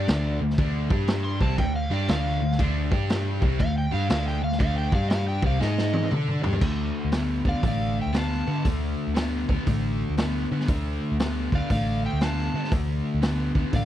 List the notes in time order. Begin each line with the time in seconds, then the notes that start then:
Already playing: D5
0.07 D2 D3 A3 D4, snare, crash
0.41 D2 D3 A3
0.50 snare
0.58 D2 D3 A3 D4, kick, crash
0.90 G2 G3 D4 G4, kick
1.08 snare, crash
1.25 C6
1.40 C2 C3 G3 C4 A5, kick
1.58 D2 D3 A3 G5, kick, crash
1.76 F5
1.91 G2 G3 D4 G4 D5
2.08 D2 D3 A3 D4 F5, snare, crash
2.26 snare
2.41 D2 D3 A3
2.51 snare
2.59 D2 D3 A3 D4, kick, crash
2.91 G2 G3 D4 G4, kick
3.10 snare, crash
3.41 C2 C3 G3 C4, kick
3.60 D2 D3 A3 F5, kick, crash
3.78 G5
3.92 G2 G3 D4 G4 F5
4.09 D2 D3 A3 D4 F5, snare, crash
4.27 G5, snare
4.42 D2 D3 A3 F5
4.52 snare
4.59 D2 D3 A3 D4 F5, kick, crash
4.78 G5
4.92 G2 G3 D4 G4 F5, kick
5.10 F5, snare, crash
5.28 G5
5.42 C2 C3 G3 C4, kick
5.46 F5
5.59 G#2 G#3 D#4 G#4 D#5, snare
5.78 snare
5.93 high tom
6.03 high tom
6.11 D3 D4 A4 D5, mid tom
6.27 mid tom
6.42 G2 G3 D4 G4, floor tom
6.53 floor tom
6.61 D2 D3 A3, kick, crash
7.05 D2
7.12 D3 B3, snare, open hi-hat
7.45 D2 D3 B3 D5 F5, kick
7.63 A1 D3 A3 D5, kick, open hi-hat
7.68 F5
8.00 E5 G5
8.06 D2
8.13 D3 B3, snare, open hi-hat
8.17 F5 A5
8.32 snare
8.46 D3 B3
8.64 D2 D3 A3, kick, open hi-hat
9.07 D2
9.15 D3 B3, snare, open hi-hat
9.48 D2 D3 B3, kick
9.66 A1 D3 A3, kick, open hi-hat
10.10 D2
10.17 D3 B3, snare, open hi-hat
10.51 D3 B3
10.60 snare
10.68 D2 D3 A3, kick, open hi-hat
11.12 D2
11.19 D3 B3, snare, open hi-hat
11.52 D2 D3 B3 D5 F5, kick
11.70 A1 D3 A3 D5 F5, kick, open hi-hat
12.05 E5 G5
12.13 D2
12.21 D3 B3 F5 A5, snare, open hi-hat
12.38 snare
12.54 D3 B3
12.64 snare
12.72 D2 D3 A3, kick, open hi-hat
13.15 D2
13.22 D3 B3, snare, open hi-hat
13.55 D2 D3 B3, kick
13.73 A1 D3 A3 D5 F5, kick, open hi-hat